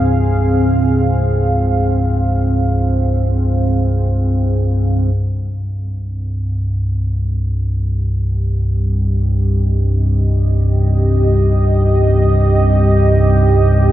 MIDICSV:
0, 0, Header, 1, 3, 480
1, 0, Start_track
1, 0, Tempo, 500000
1, 13365, End_track
2, 0, Start_track
2, 0, Title_t, "Ambient pad"
2, 0, Program_c, 0, 92
2, 0, Note_on_c, 0, 60, 65
2, 0, Note_on_c, 0, 68, 81
2, 0, Note_on_c, 0, 77, 85
2, 4940, Note_off_c, 0, 68, 0
2, 6143, Note_off_c, 0, 77, 0
2, 6521, Note_on_c, 0, 67, 84
2, 8587, Note_on_c, 0, 75, 90
2, 13365, Note_off_c, 0, 60, 0
2, 13365, Note_off_c, 0, 67, 0
2, 13365, Note_off_c, 0, 75, 0
2, 13365, End_track
3, 0, Start_track
3, 0, Title_t, "Synth drone"
3, 0, Program_c, 1, 95
3, 0, Note_on_c, 1, 36, 64
3, 0, Note_on_c, 1, 43, 65
3, 4942, Note_off_c, 1, 43, 0
3, 4948, Note_off_c, 1, 36, 0
3, 4954, Note_on_c, 1, 43, 66
3, 4959, Note_on_c, 1, 36, 74
3, 13365, Note_off_c, 1, 36, 0
3, 13365, Note_off_c, 1, 43, 0
3, 13365, End_track
0, 0, End_of_file